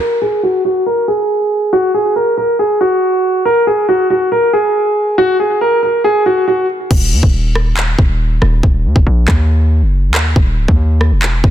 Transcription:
0.00 0.18 A#4 loud
0.22 0.39 G#4 medium
0.43 0.61 F#4 medium
0.65 0.82 F#4 medium
0.86 1.04 A#4 medium
1.08 1.69 G#4 medium
1.73 1.90 F#4 loud
1.94 2.12 G#4 medium
2.16 2.33 A#4 medium
2.38 2.55 A#4 medium
2.59 2.77 G#4 medium
2.81 3.41 F#4 medium
3.45 3.63 A#4 medium
3.67 3.84 G#4 medium
3.89 4.06 F#4 medium
4.10 4.28 F#4 medium
4.32 4.49 A#4 medium
4.53 5.14 G#4 medium
5.18 5.36 F#4 loud
5.40 5.57 G#4 medium
5.61 5.79 A#4 medium
6.04 6.22 G#4 medium
6.26 6.43 F#4 medium
6.48 6.65 F#4 medium
6.91 7.14 D#1 loud
6.91 kick loud
6.91 crash loud
7.12 7.23 D#2 loud
7.23 7.96 D#1 loud
7.23 kick loud
7.55 cross-stick loud
7.77 clap loud
7.99 8.40 D#1 loud
7.99 kick medium
8.42 8.62 D#1 loud
8.42 cross-stick medium
8.63 8.86 D#1 loud
8.63 kick loud
8.85 8.95 D#2 loud
8.96 9.06 D#1 loud
8.96 kick loud
9.07 9.27 A#1 loud
9.28 9.84 D#2 loud
9.28 kick medium
9.28 cross-stick loud
9.28 clap medium
9.82 10.11 F#1 loud
10.09 10.35 D#2 loud
10.14 cross-stick medium
10.14 clap loud
10.36 10.59 D#1 loud
10.36 kick loud
10.58 10.68 C#1 loud
10.68 11.13 D#2 loud
10.68 kick loud
11.01 cross-stick medium
11.12 11.42 E1 loud
11.22 clap loud
11.44 11.50 D#1 loud
11.44 kick loud

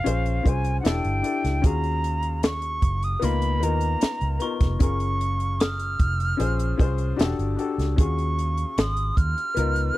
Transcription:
0.00 0.38 C#4 medium
0.00 0.50 F5 medium
0.05 0.39 A#1 loud
0.05 0.38 F4 medium
0.05 0.39 G#4 medium
0.05 0.39 C5 medium
0.05 closed hi-hat loud
0.26 closed hi-hat soft
0.43 0.78 C2 medium
0.43 0.84 C#4 medium
0.43 0.84 F4 medium
0.43 0.85 G#4 medium
0.43 0.85 C5 medium
0.43 kick medium
0.43 closed hi-hat medium
0.49 0.79 G#5 medium
0.64 closed hi-hat medium
0.80 1.17 D4 medium
0.80 1.17 E4 medium
0.80 0.88 F#5 medium
0.85 1.01 E1 medium
0.85 1.18 G4 medium
0.85 1.18 A4 medium
0.85 1.68 G5 medium
0.85 snare loud
0.85 closed hi-hat medium
1.04 1.21 G1 medium
1.04 closed hi-hat soft
1.22 1.56 D4 medium
1.22 1.57 E4 medium
1.22 1.57 G4 medium
1.22 1.58 A4 medium
1.22 closed hi-hat medium
1.44 1.61 C#2 medium
1.44 snare soft
1.44 closed hi-hat medium
1.62 2.79 D#2 medium
1.62 2.94 C#4 medium
1.62 2.94 F4 medium
1.62 2.95 F#4 medium
1.62 2.95 G#4 medium
1.62 kick loud
1.62 closed hi-hat medium
1.66 2.44 A#5 loud
1.84 closed hi-hat soft
2.04 closed hi-hat medium
2.23 closed hi-hat soft
2.43 3.06 C#6 loud
2.43 snare loud
2.43 closed hi-hat medium
2.62 closed hi-hat soft
2.82 3.15 F#1 medium
2.82 kick medium
2.82 closed hi-hat medium
3.03 3.26 D#6 loud
3.03 closed hi-hat soft
3.19 3.62 C#2 loud
3.19 3.55 A#3 medium
3.19 3.54 B3 medium
3.19 3.54 D#4 medium
3.19 3.55 F4 medium
3.19 closed hi-hat medium
3.24 3.65 B5 loud
3.42 closed hi-hat medium
3.60 3.95 D#2 medium
3.60 4.26 B3 medium
3.60 4.27 D#4 medium
3.60 4.28 F4 medium
3.60 4.28 A#4 medium
3.60 4.54 A#5 loud
3.60 closed hi-hat medium
3.81 closed hi-hat soft
4.01 muted fingered electric bass stroke soft
4.01 snare loud
4.01 closed hi-hat medium
4.21 4.38 C#2 medium
4.21 closed hi-hat soft
4.40 4.73 B3 medium
4.40 4.74 D#4 medium
4.40 4.74 F4 medium
4.40 4.75 A#4 medium
4.40 5.17 C#6 medium
4.40 closed hi-hat medium
4.60 4.77 F1 medium
4.60 kick medium
4.60 snare soft
4.60 closed hi-hat medium
4.79 5.96 F#1 loud
4.79 6.11 C#4 medium
4.79 6.11 F4 medium
4.79 6.12 G#4 medium
4.79 6.12 A#4 medium
4.79 5.63 C#6 loud
4.79 kick loud
4.79 closed hi-hat medium
5.00 closed hi-hat soft
5.21 closed hi-hat medium
5.40 closed hi-hat soft
5.60 6.75 D#6 medium
5.60 7.19 F6 loud
5.60 snare loud
5.60 closed hi-hat medium
5.79 closed hi-hat medium
5.99 6.33 F1 medium
5.99 kick medium
5.99 closed hi-hat medium
6.20 closed hi-hat medium
6.37 6.72 A#1 loud
6.37 6.71 C#4 medium
6.37 6.72 F4 medium
6.37 6.72 G#4 medium
6.37 6.73 C5 medium
6.37 closed hi-hat medium
6.59 closed hi-hat medium
6.77 7.12 C2 medium
6.77 7.18 C#4 medium
6.77 7.18 F4 medium
6.77 7.19 G#4 medium
6.77 7.20 C5 loud
6.77 kick medium
6.77 closed hi-hat medium
6.98 closed hi-hat soft
7.16 7.35 E1 medium
7.16 7.50 D4 medium
7.16 7.51 F#4 medium
7.16 7.51 G4 medium
7.16 7.52 A4 medium
7.16 closed hi-hat medium
7.21 snare loud
7.39 7.55 G1 medium
7.39 closed hi-hat soft
7.56 7.90 D4 medium
7.56 7.91 F#4 medium
7.56 7.91 G4 medium
7.56 7.92 A4 medium
7.56 closed hi-hat medium
7.78 7.94 C#2 medium
7.78 snare soft
7.78 closed hi-hat medium
7.96 8.64 D#2 loud
7.96 9.28 C#4 medium
7.96 9.29 F4 medium
7.96 9.29 F#4 medium
7.96 9.30 G#4 medium
7.96 8.80 C#6 medium
7.96 kick loud
7.96 closed hi-hat medium
8.19 closed hi-hat soft
8.39 closed hi-hat medium
8.57 closed hi-hat soft
8.78 9.10 G#1 medium
8.78 9.92 C6 soft
8.78 9.18 D#6 loud
8.78 snare loud
8.78 closed hi-hat medium
8.97 closed hi-hat medium
9.17 9.33 D#2 medium
9.17 9.98 F6 loud
9.17 kick medium
9.17 closed hi-hat medium
9.38 closed hi-hat soft
9.54 9.90 C#2 medium
9.54 9.88 B3 medium
9.54 9.89 D#4 medium
9.54 9.89 F4 medium
9.54 9.90 A#4 medium
9.54 closed hi-hat medium
9.76 closed hi-hat soft
9.94 9.98 B3 medium

